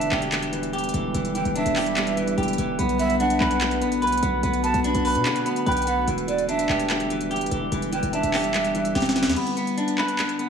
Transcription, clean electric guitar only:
0, 0, Header, 1, 2, 480
1, 0, Start_track
1, 0, Key_signature, 2, "minor"
1, 0, Tempo, 410959
1, 1337, Time_signature, 4, 2, 24, 8
1, 12252, End_track
2, 0, Start_track
2, 0, Title_t, "Clean electric guitar"
2, 0, Program_c, 0, 27
2, 0, Note_on_c, 0, 52, 72
2, 0, Note_on_c, 0, 62, 91
2, 136, Note_on_c, 0, 67, 82
2, 602, Note_off_c, 0, 52, 0
2, 616, Note_on_c, 0, 52, 78
2, 842, Note_off_c, 0, 67, 0
2, 856, Note_on_c, 0, 67, 96
2, 1082, Note_off_c, 0, 52, 0
2, 1096, Note_on_c, 0, 52, 71
2, 1322, Note_off_c, 0, 52, 0
2, 1336, Note_on_c, 0, 52, 86
2, 1337, Note_off_c, 0, 62, 0
2, 1563, Note_off_c, 0, 52, 0
2, 1577, Note_on_c, 0, 52, 83
2, 1816, Note_on_c, 0, 62, 85
2, 2043, Note_off_c, 0, 67, 0
2, 2057, Note_on_c, 0, 67, 91
2, 2522, Note_off_c, 0, 52, 0
2, 2536, Note_on_c, 0, 52, 76
2, 2762, Note_off_c, 0, 67, 0
2, 2776, Note_on_c, 0, 67, 96
2, 3002, Note_off_c, 0, 52, 0
2, 3016, Note_on_c, 0, 52, 78
2, 3251, Note_off_c, 0, 62, 0
2, 3256, Note_off_c, 0, 52, 0
2, 3256, Note_off_c, 0, 67, 0
2, 3256, Note_on_c, 0, 59, 91
2, 3482, Note_off_c, 0, 59, 0
2, 3496, Note_on_c, 0, 59, 79
2, 3737, Note_on_c, 0, 62, 81
2, 3977, Note_on_c, 0, 71, 85
2, 4442, Note_off_c, 0, 59, 0
2, 4456, Note_on_c, 0, 59, 78
2, 4683, Note_off_c, 0, 71, 0
2, 4697, Note_on_c, 0, 71, 104
2, 4922, Note_off_c, 0, 59, 0
2, 4936, Note_on_c, 0, 59, 80
2, 5162, Note_off_c, 0, 59, 0
2, 5176, Note_on_c, 0, 59, 91
2, 5177, Note_off_c, 0, 62, 0
2, 5402, Note_off_c, 0, 59, 0
2, 5416, Note_on_c, 0, 59, 80
2, 5657, Note_on_c, 0, 62, 88
2, 5883, Note_off_c, 0, 71, 0
2, 5897, Note_on_c, 0, 71, 87
2, 6363, Note_off_c, 0, 59, 0
2, 6377, Note_on_c, 0, 59, 83
2, 6602, Note_off_c, 0, 71, 0
2, 6616, Note_on_c, 0, 71, 104
2, 6843, Note_off_c, 0, 59, 0
2, 6857, Note_on_c, 0, 59, 80
2, 7096, Note_off_c, 0, 71, 0
2, 7097, Note_off_c, 0, 59, 0
2, 7097, Note_off_c, 0, 62, 0
2, 7098, Note_on_c, 0, 52, 91
2, 7323, Note_off_c, 0, 52, 0
2, 7337, Note_on_c, 0, 52, 72
2, 7577, Note_on_c, 0, 62, 88
2, 7817, Note_on_c, 0, 67, 88
2, 8283, Note_off_c, 0, 52, 0
2, 8297, Note_on_c, 0, 52, 76
2, 8522, Note_off_c, 0, 67, 0
2, 8536, Note_on_c, 0, 67, 99
2, 8763, Note_off_c, 0, 52, 0
2, 8777, Note_on_c, 0, 52, 72
2, 9003, Note_off_c, 0, 52, 0
2, 9017, Note_off_c, 0, 62, 0
2, 9017, Note_on_c, 0, 52, 87
2, 9243, Note_off_c, 0, 52, 0
2, 9257, Note_on_c, 0, 52, 83
2, 9496, Note_on_c, 0, 62, 88
2, 9723, Note_off_c, 0, 67, 0
2, 9737, Note_on_c, 0, 67, 85
2, 10203, Note_off_c, 0, 52, 0
2, 10217, Note_on_c, 0, 52, 79
2, 10442, Note_off_c, 0, 67, 0
2, 10456, Note_on_c, 0, 67, 95
2, 10682, Note_off_c, 0, 52, 0
2, 10696, Note_on_c, 0, 52, 78
2, 10932, Note_off_c, 0, 62, 0
2, 10936, Note_off_c, 0, 52, 0
2, 10936, Note_off_c, 0, 67, 0
2, 10936, Note_on_c, 0, 59, 87
2, 11162, Note_off_c, 0, 59, 0
2, 11176, Note_on_c, 0, 59, 82
2, 11417, Note_on_c, 0, 62, 77
2, 11656, Note_on_c, 0, 71, 83
2, 12122, Note_off_c, 0, 59, 0
2, 12136, Note_on_c, 0, 59, 74
2, 12252, Note_off_c, 0, 59, 0
2, 12252, Note_off_c, 0, 62, 0
2, 12252, Note_off_c, 0, 71, 0
2, 12252, End_track
0, 0, End_of_file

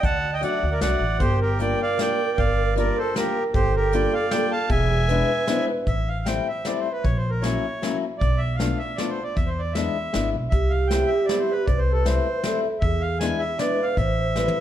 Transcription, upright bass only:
0, 0, Header, 1, 2, 480
1, 0, Start_track
1, 0, Key_signature, -2, "minor"
1, 0, Tempo, 389610
1, 42, Time_signature, 3, 2, 24, 8
1, 7242, Key_signature, 0, "minor"
1, 9641, Tempo, 383877
1, 18117, End_track
2, 0, Start_track
2, 0, Title_t, "Upright bass"
2, 0, Program_c, 0, 32
2, 37, Note_on_c, 0, 38, 82
2, 515, Note_off_c, 0, 38, 0
2, 775, Note_on_c, 0, 38, 71
2, 979, Note_off_c, 0, 38, 0
2, 997, Note_on_c, 0, 36, 74
2, 1229, Note_off_c, 0, 36, 0
2, 1239, Note_on_c, 0, 33, 74
2, 1453, Note_off_c, 0, 33, 0
2, 1485, Note_on_c, 0, 31, 90
2, 2114, Note_off_c, 0, 31, 0
2, 2933, Note_on_c, 0, 31, 81
2, 3555, Note_off_c, 0, 31, 0
2, 4362, Note_on_c, 0, 31, 84
2, 4983, Note_off_c, 0, 31, 0
2, 5785, Note_on_c, 0, 28, 100
2, 6413, Note_off_c, 0, 28, 0
2, 7230, Note_on_c, 0, 33, 78
2, 7861, Note_off_c, 0, 33, 0
2, 8674, Note_on_c, 0, 34, 91
2, 9299, Note_off_c, 0, 34, 0
2, 10128, Note_on_c, 0, 35, 91
2, 10750, Note_off_c, 0, 35, 0
2, 11564, Note_on_c, 0, 40, 86
2, 12192, Note_off_c, 0, 40, 0
2, 12543, Note_on_c, 0, 32, 69
2, 12769, Note_off_c, 0, 32, 0
2, 12798, Note_on_c, 0, 35, 68
2, 12999, Note_off_c, 0, 35, 0
2, 13007, Note_on_c, 0, 36, 79
2, 13637, Note_off_c, 0, 36, 0
2, 14459, Note_on_c, 0, 36, 90
2, 15081, Note_off_c, 0, 36, 0
2, 15880, Note_on_c, 0, 40, 94
2, 16503, Note_off_c, 0, 40, 0
2, 17326, Note_on_c, 0, 33, 91
2, 17950, Note_off_c, 0, 33, 0
2, 18117, End_track
0, 0, End_of_file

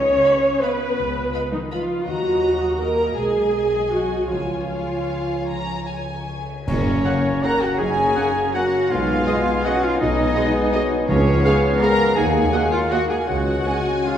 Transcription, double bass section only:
0, 0, Header, 1, 2, 480
1, 0, Start_track
1, 0, Key_signature, 6, "major"
1, 0, Tempo, 365186
1, 1292, Time_signature, 3, 2, 24, 8
1, 4653, Tempo, 393443
1, 8013, Tempo, 381679
1, 9453, Tempo, 368777
1, 12333, Tempo, 359066
1, 16173, Tempo, 383387
1, 18243, End_track
2, 0, Start_track
2, 0, Title_t, "Double bass section"
2, 0, Program_c, 0, 48
2, 0, Note_on_c, 0, 37, 89
2, 244, Note_off_c, 0, 37, 0
2, 1286, Note_on_c, 0, 37, 73
2, 1679, Note_off_c, 0, 37, 0
2, 2717, Note_on_c, 0, 39, 78
2, 4118, Note_off_c, 0, 39, 0
2, 4177, Note_on_c, 0, 35, 64
2, 5593, Note_off_c, 0, 35, 0
2, 5598, Note_on_c, 0, 37, 57
2, 8216, Note_off_c, 0, 37, 0
2, 8498, Note_on_c, 0, 30, 92
2, 8889, Note_off_c, 0, 30, 0
2, 9918, Note_on_c, 0, 30, 94
2, 10312, Note_off_c, 0, 30, 0
2, 11370, Note_on_c, 0, 35, 83
2, 11761, Note_off_c, 0, 35, 0
2, 12811, Note_on_c, 0, 35, 94
2, 13203, Note_off_c, 0, 35, 0
2, 14257, Note_on_c, 0, 37, 112
2, 14650, Note_off_c, 0, 37, 0
2, 15706, Note_on_c, 0, 39, 111
2, 16096, Note_off_c, 0, 39, 0
2, 17125, Note_on_c, 0, 37, 85
2, 17514, Note_off_c, 0, 37, 0
2, 18243, End_track
0, 0, End_of_file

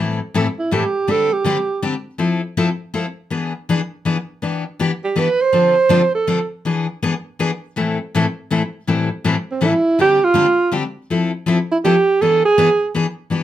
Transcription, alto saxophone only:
0, 0, Header, 1, 2, 480
1, 0, Start_track
1, 0, Key_signature, 0, "minor"
1, 0, Tempo, 369914
1, 1409, Time_signature, 3, 2, 24, 8
1, 17429, End_track
2, 0, Start_track
2, 0, Title_t, "Alto saxophone"
2, 0, Program_c, 0, 65
2, 764, Note_on_c, 0, 64, 70
2, 948, Note_on_c, 0, 67, 83
2, 967, Note_off_c, 0, 64, 0
2, 1442, Note_on_c, 0, 69, 86
2, 1461, Note_off_c, 0, 67, 0
2, 1726, Note_on_c, 0, 67, 84
2, 1745, Note_off_c, 0, 69, 0
2, 2380, Note_off_c, 0, 67, 0
2, 6540, Note_on_c, 0, 67, 80
2, 6724, Note_on_c, 0, 71, 99
2, 6743, Note_off_c, 0, 67, 0
2, 7026, Note_on_c, 0, 72, 102
2, 7045, Note_off_c, 0, 71, 0
2, 7968, Note_off_c, 0, 72, 0
2, 7975, Note_on_c, 0, 69, 74
2, 8410, Note_off_c, 0, 69, 0
2, 12345, Note_on_c, 0, 60, 75
2, 12526, Note_on_c, 0, 64, 89
2, 12546, Note_off_c, 0, 60, 0
2, 12972, Note_off_c, 0, 64, 0
2, 12991, Note_on_c, 0, 67, 104
2, 13290, Note_on_c, 0, 65, 94
2, 13309, Note_off_c, 0, 67, 0
2, 13925, Note_off_c, 0, 65, 0
2, 15202, Note_on_c, 0, 64, 70
2, 15273, Note_off_c, 0, 64, 0
2, 15367, Note_on_c, 0, 67, 93
2, 15851, Note_on_c, 0, 69, 97
2, 15871, Note_off_c, 0, 67, 0
2, 16127, Note_off_c, 0, 69, 0
2, 16158, Note_on_c, 0, 68, 97
2, 16753, Note_off_c, 0, 68, 0
2, 17429, End_track
0, 0, End_of_file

